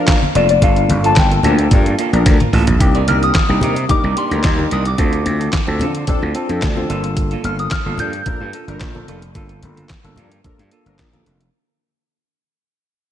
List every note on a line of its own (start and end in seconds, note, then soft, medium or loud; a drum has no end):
0.00 0.18 F3 loud
0.00 0.18 D4 loud
0.00 0.18 A#4 loud
0.00 0.38 F5 loud
0.08 kick loud
0.08 snare loud
0.08 clap loud
0.08 closed hi-hat loud
0.08 muted conga soft
0.22 muted clean electric guitar stroke soft
0.22 high conga medium
0.35 0.57 F1 medium
0.35 0.53 A#3 medium
0.35 0.50 F4 loud
0.35 0.48 A4 medium
0.35 0.49 D5 medium
0.35 closed hi-hat medium
0.49 0.62 D5 medium
0.49 muted clean electric guitar stroke soft
0.49 closed hi-hat medium
0.62 0.84 G1 loud
0.62 1.05 A#3 medium
0.62 0.88 A#3 medium
0.62 1.05 D4 medium
0.62 1.05 F4 medium
0.62 0.88 F4 medium
0.62 1.05 A4 medium
0.62 0.89 A4 loud
0.62 1.06 F5 loud
0.62 kick loud
0.62 closed hi-hat loud
0.62 muted conga soft
0.62 low conga medium
0.76 closed hi-hat soft
0.89 1.11 G1 loud
0.89 muted clean electric guitar stroke soft
0.89 closed hi-hat medium
0.89 high conga medium
1.04 1.15 F3 medium
1.04 1.16 A#3 soft
1.04 1.15 D4 medium
1.04 1.17 F4 medium
1.04 1.17 A4 medium
1.04 1.15 A4 loud
1.04 1.18 A5 medium
1.04 closed hi-hat medium
1.16 1.39 G1 loud
1.16 2.23 G5 loud
1.16 kick loud
1.16 snare loud
1.16 clap loud
1.16 closed hi-hat loud
1.31 1.39 A#3 medium
1.31 1.39 D4 medium
1.31 1.39 F4 medium
1.31 1.39 A4 medium
1.31 muted clean electric guitar stroke medium
1.31 closed hi-hat soft
1.43 1.66 D2 medium
1.43 1.57 F3 loud
1.43 2.12 A#3 medium
1.43 1.59 A#3 medium
1.43 2.12 D4 medium
1.43 1.57 D4 loud
1.43 2.12 F4 medium
1.43 1.58 F4 medium
1.43 2.12 A4 loud
1.43 1.58 A4 medium
1.43 1.57 A#4 loud
1.43 closed hi-hat medium
1.43 high conga medium
1.43 low conga medium
1.58 1.70 A#3 medium
1.58 1.71 F4 medium
1.58 1.71 A#4 medium
1.58 closed hi-hat medium
1.71 1.93 G2 loud
1.71 1.84 F3 medium
1.71 1.84 D4 medium
1.71 1.84 A#4 medium
1.71 muted clean electric guitar stroke medium
1.71 kick loud
1.71 closed hi-hat loud
1.71 muted conga soft
1.71 low conga medium
1.86 1.97 A#3 medium
1.86 1.98 F4 medium
1.86 1.98 A4 medium
1.86 closed hi-hat soft
1.86 muted conga soft
1.98 2.16 A#3 loud
1.98 2.13 F4 medium
1.98 2.12 A4 medium
1.98 closed hi-hat medium
2.13 2.23 A#1 medium
2.13 2.36 F3 loud
2.13 2.36 D4 medium
2.13 2.36 A#4 loud
2.13 muted clean electric guitar stroke medium
2.13 closed hi-hat soft
2.26 2.38 D2 medium
2.26 muted clean electric guitar stroke soft
2.26 kick loud
2.26 snare medium
2.26 closed hi-hat loud
2.40 2.52 A#3 medium
2.40 2.53 F4 soft
2.40 2.53 A#4 medium
2.40 closed hi-hat soft
2.40 high tom medium
2.40 muted conga soft
2.40 high conga medium
2.53 2.65 A1 medium
2.53 2.71 A#3 loud
2.53 2.68 F4 medium
2.53 2.67 A4 loud
2.53 mid tom medium
2.53 open hi-hat medium
2.67 2.78 A#1 loud
2.67 muted clean electric guitar stroke medium
2.67 closed hi-hat medium
2.67 floor tom loud
2.80 3.03 C2 loud
2.80 2.98 A#3 medium
2.80 2.98 D4 medium
2.80 2.98 D#4 medium
2.80 2.98 G4 loud
2.80 muted clean electric guitar stroke soft
2.80 kick loud
2.80 closed hi-hat loud
2.95 3.07 D#4 medium
2.95 3.08 A#4 medium
2.95 3.09 D5 loud
2.95 closed hi-hat soft
2.95 muted conga soft
3.07 3.30 C2 loud
3.07 3.33 A#3 medium
3.07 3.33 D4 medium
3.07 3.22 D#4 medium
3.07 3.33 D#4 medium
3.07 3.33 G4 medium
3.07 3.23 A#4 medium
3.07 3.21 D5 medium
3.07 3.23 F6 loud
3.07 closed hi-hat medium
3.07 high conga medium
3.22 3.92 D#6 medium
3.22 muted clean electric guitar stroke soft
3.22 closed hi-hat soft
3.35 muted clean electric guitar stroke soft
3.35 kick loud
3.35 snare loud
3.35 clap medium
3.35 closed hi-hat medium
3.49 3.60 C2 loud
3.49 3.74 A#3 medium
3.49 3.74 D4 medium
3.49 3.75 D#4 medium
3.49 3.61 D#4 medium
3.49 3.75 G4 medium
3.49 3.62 A#4 medium
3.49 3.63 D5 medium
3.49 muted conga soft
3.61 3.84 C3 loud
3.61 3.75 G3 medium
3.61 3.76 D#4 medium
3.61 3.75 D#4 medium
3.61 3.75 A#4 loud
3.61 3.77 A#4 medium
3.61 3.75 D5 medium
3.61 closed hi-hat medium
3.61 high conga medium
3.61 low conga medium
3.76 muted clean electric guitar stroke soft
3.76 closed hi-hat medium
3.89 4.02 G3 loud
3.89 4.07 A#3 medium
3.89 4.07 D4 medium
3.89 4.07 D#4 medium
3.89 4.02 D#4 loud
3.89 4.07 G4 medium
3.89 4.02 A#4 loud
3.89 4.18 D6 loud
3.89 muted clean electric guitar stroke medium
3.89 kick loud
3.89 closed hi-hat loud
3.89 low conga medium
4.04 4.14 C2 loud
4.04 4.15 D#4 medium
4.04 4.16 A#4 medium
4.04 4.17 D5 medium
4.04 muted conga soft
4.16 4.42 A#3 medium
4.16 4.42 D4 medium
4.16 4.42 D#4 medium
4.16 4.31 D#4 medium
4.16 4.42 G4 medium
4.16 4.32 A#4 medium
4.16 4.30 D5 medium
4.16 4.74 C6 loud
4.16 closed hi-hat medium
4.31 4.42 D2 medium
4.31 4.69 G3 medium
4.31 4.70 D#4 medium
4.31 4.69 A#4 loud
4.31 muted clean electric guitar stroke soft
4.31 closed hi-hat soft
4.44 4.66 D#2 medium
4.44 kick loud
4.44 snare loud
4.44 clap loud
4.44 closed hi-hat loud
4.58 4.83 A#3 medium
4.58 4.83 D4 medium
4.58 4.84 D#4 medium
4.58 4.84 G4 medium
4.58 muted clean electric guitar stroke soft
4.58 muted conga soft
4.58 high conga medium
4.71 4.94 C2 medium
4.71 4.89 D#4 medium
4.71 4.86 A#4 medium
4.71 4.84 D5 loud
4.71 4.79 D#6 medium
4.71 closed hi-hat medium
4.85 6.46 D6 medium
4.85 muted clean electric guitar stroke soft
4.85 closed hi-hat medium
4.98 5.21 D2 loud
4.98 5.24 C4 loud
4.98 5.16 C4 medium
4.98 5.16 D4 medium
4.98 5.16 F4 medium
4.98 5.24 F4 loud
4.98 5.16 A4 medium
4.98 5.25 A4 loud
4.98 kick loud
4.98 closed hi-hat loud
5.13 closed hi-hat soft
5.25 5.48 D2 loud
5.25 5.51 C4 medium
5.25 5.51 D4 medium
5.25 5.51 F4 medium
5.25 5.51 A4 medium
5.25 muted clean electric guitar stroke soft
5.25 closed hi-hat medium
5.25 high conga medium
5.40 5.52 C4 medium
5.40 5.52 F4 medium
5.40 5.53 A4 medium
5.40 closed hi-hat soft
5.53 muted clean electric guitar stroke medium
5.53 kick loud
5.53 snare loud
5.53 clap medium
5.53 closed hi-hat loud
5.67 5.82 D2 loud
5.67 5.92 C4 medium
5.67 5.93 D4 medium
5.67 5.93 F4 medium
5.67 5.93 A4 loud
5.67 muted clean electric guitar stroke medium
5.67 muted conga soft
5.80 6.03 D3 loud
5.80 5.93 F3 medium
5.80 5.95 C4 medium
5.80 5.93 D4 medium
5.80 5.95 F4 medium
5.80 5.93 A4 medium
5.80 5.94 A4 loud
5.80 closed hi-hat medium
5.80 high conga medium
5.80 low conga medium
5.95 6.06 C4 soft
5.95 6.07 F4 medium
5.95 6.07 C5 medium
5.95 closed hi-hat medium
6.07 6.20 F3 loud
6.07 6.25 C4 medium
6.07 6.20 D4 loud
6.07 6.25 D4 medium
6.07 6.25 F4 medium
6.07 6.20 A4 loud
6.07 6.26 A4 loud
6.07 muted clean electric guitar stroke soft
6.07 kick loud
6.07 closed hi-hat loud
6.07 muted conga soft
6.07 low conga medium
6.22 6.33 D2 loud
6.22 6.34 C4 medium
6.22 6.35 F4 medium
6.22 6.35 A4 medium
6.22 muted conga soft
6.35 6.60 C4 loud
6.35 6.53 C4 medium
6.35 6.60 D4 medium
6.35 6.61 F4 medium
6.35 6.50 F4 medium
6.35 6.61 A4 loud
6.35 6.48 A4 medium
6.35 closed hi-hat medium
6.49 6.62 F2 medium
6.49 6.88 F3 medium
6.49 6.87 D4 medium
6.49 6.88 A4 loud
6.49 muted clean electric guitar stroke medium
6.49 closed hi-hat soft
6.62 6.85 D2 medium
6.62 muted clean electric guitar stroke soft
6.62 kick loud
6.62 snare loud
6.62 clap loud
6.62 closed hi-hat loud
6.76 6.89 C4 medium
6.76 6.88 D4 medium
6.76 6.88 F4 medium
6.76 6.89 F4 soft
6.76 6.89 A4 loud
6.76 6.89 C5 medium
6.76 muted conga soft
6.76 high conga medium
6.89 7.34 G1 medium
6.89 7.34 A#3 medium
6.89 7.07 A#3 medium
6.89 7.34 D4 medium
6.89 7.34 F4 medium
6.89 7.05 F4 loud
6.89 7.34 A4 loud
6.89 7.03 A4 loud
6.89 closed hi-hat medium
7.04 muted clean electric guitar stroke soft
7.04 closed hi-hat medium
7.17 muted clean electric guitar stroke soft
7.17 kick loud
7.17 closed hi-hat loud
7.31 7.43 A#3 medium
7.31 7.44 F4 medium
7.31 7.45 A4 medium
7.31 closed hi-hat soft
7.31 muted conga soft
7.44 7.66 G1 loud
7.44 7.69 A#3 medium
7.44 7.59 A#3 medium
7.44 7.69 D4 medium
7.44 7.69 F4 medium
7.44 7.59 F4 medium
7.44 7.70 A4 medium
7.44 7.58 A4 medium
7.44 7.60 F6 medium
7.44 closed hi-hat medium
7.44 high conga medium
7.59 7.65 D#6 medium
7.59 muted clean electric guitar stroke soft
7.59 closed hi-hat soft
7.70 8.00 F6 medium
7.70 muted clean electric guitar stroke soft
7.70 kick loud
7.70 snare loud
7.70 clap medium
7.70 closed hi-hat loud
7.70 muted conga soft
7.85 7.96 G1 loud
7.85 8.11 A#3 medium
7.85 7.97 A#3 medium
7.85 8.11 D4 medium
7.85 8.11 F4 medium
7.85 7.98 F4 medium
7.85 7.99 A4 medium
7.85 8.11 A4 medium
7.98 8.21 G2 loud
7.98 8.11 F3 medium
7.98 8.13 A#3 medium
7.98 8.11 D4 medium
7.98 8.13 F4 medium
7.98 8.11 A4 medium
7.98 8.12 A4 medium
7.98 10.95 G6 loud
7.98 closed hi-hat medium
7.98 high conga medium
7.98 low conga medium
8.13 muted clean electric guitar stroke soft
8.13 closed hi-hat medium
8.26 8.39 F3 loud
8.26 8.43 A#3 medium
8.26 8.44 D4 medium
8.26 8.39 D4 medium
8.26 8.44 F4 medium
8.26 8.44 A4 medium
8.26 8.39 A#4 loud
8.26 muted clean electric guitar stroke medium
8.26 kick loud
8.26 closed hi-hat loud
8.26 low conga medium
8.40 8.51 G2 medium
8.40 8.52 A#3 medium
8.40 8.53 F4 medium
8.40 8.54 A4 medium
8.40 muted conga soft
8.53 8.68 A#3 medium
8.53 8.79 A#3 medium
8.53 8.79 D4 medium
8.53 8.79 F4 medium
8.53 8.68 F4 medium
8.53 8.79 A4 medium
8.53 8.66 A4 medium
8.53 closed hi-hat medium
8.68 8.78 G1 medium
8.68 9.06 F3 medium
8.68 9.06 D4 medium
8.68 9.06 A#4 loud
8.68 muted clean electric guitar stroke soft
8.68 closed hi-hat soft
8.80 9.03 A#1 medium
8.80 kick loud
8.80 snare loud
8.80 clap loud
8.80 closed hi-hat loud
8.95 9.20 A#3 medium
8.95 9.20 D4 medium
8.95 9.20 F4 medium
8.95 9.20 A4 medium
8.95 muted clean electric guitar stroke soft
8.95 muted conga soft
8.95 high conga medium
9.08 9.30 F1 loud
9.08 9.26 A#3 medium
9.08 9.22 F4 medium
9.08 9.21 A4 loud
9.08 closed hi-hat medium
9.22 muted clean electric guitar stroke soft
9.22 closed hi-hat medium
9.34 9.57 G1 loud
9.34 9.60 A#3 medium
9.34 9.52 A#3 medium
9.34 9.53 D4 medium
9.34 9.53 F4 medium
9.34 9.61 F4 medium
9.34 9.53 A4 loud
9.34 9.61 A4 loud
9.34 kick loud
9.34 closed hi-hat loud
9.34 muted conga soft
9.49 closed hi-hat soft
9.63 9.85 G1 loud
9.63 9.88 A#3 medium
9.63 9.88 D4 medium
9.63 9.88 F4 medium
9.63 9.88 A4 medium
9.63 muted clean electric guitar stroke soft
9.63 closed hi-hat medium
9.63 high conga medium
9.76 9.88 A#3 soft
9.76 9.89 F4 medium
9.76 9.89 A4 medium
9.76 closed hi-hat soft
9.76 high conga soft
9.89 kick loud
9.89 snare loud
9.89 clap medium
9.89 closed hi-hat medium
10.04 10.15 G1 loud
10.04 10.29 A#3 medium
10.04 10.29 D4 medium
10.04 10.29 F4 medium
10.04 10.29 A4 loud
10.04 muted clean electric guitar stroke soft
10.04 closed hi-hat soft
10.16 10.39 G2 loud
10.16 10.29 F3 medium
10.16 10.32 A#3 medium
10.16 10.29 D4 medium
10.16 10.31 F4 medium
10.16 10.31 A4 medium
10.16 10.29 A#4 medium
10.16 closed hi-hat medium
10.16 high conga medium
10.16 low conga medium
10.31 10.43 A#3 soft
10.31 10.44 F4 medium
10.31 10.44 A#4 medium
10.31 closed hi-hat medium
10.44 10.57 F3 medium
10.44 10.62 A#3 medium
10.44 10.62 D4 medium
10.44 10.57 D4 medium
10.44 10.62 F4 medium
10.44 10.62 A4 medium
10.44 10.57 A#4 loud
10.44 kick loud
10.44 closed hi-hat loud
10.44 low conga medium
10.58 10.69 G2 loud
10.58 10.70 A#3 medium
10.58 10.71 F4 medium
10.58 10.71 A4 medium
10.58 closed hi-hat soft
10.71 10.89 A#3 medium
10.71 10.97 A#3 medium
10.71 10.97 D4 medium
10.71 10.97 F4 medium
10.71 10.86 F4 medium
10.71 10.97 A4 loud
10.71 10.85 A4 medium
10.71 closed hi-hat medium
10.86 10.96 G1 medium
10.86 11.24 F3 loud
10.86 11.24 D4 loud
10.86 11.24 A#4 loud
10.86 muted clean electric guitar stroke soft
10.86 closed hi-hat soft
10.99 11.21 A#1 medium
10.99 kick loud
10.99 snare loud
10.99 clap loud
10.99 closed hi-hat loud
10.99 muted conga soft
11.13 11.38 A#3 medium
11.13 11.25 A#3 medium
11.13 11.38 D4 medium
11.13 11.38 F4 medium
11.13 11.26 F4 medium
11.13 11.39 A4 medium
11.13 11.27 A#4 medium
11.13 closed hi-hat soft
11.13 muted conga soft
11.13 high conga medium
11.26 11.48 F1 medium
11.26 closed hi-hat medium
11.40 muted clean electric guitar stroke soft
11.40 closed hi-hat medium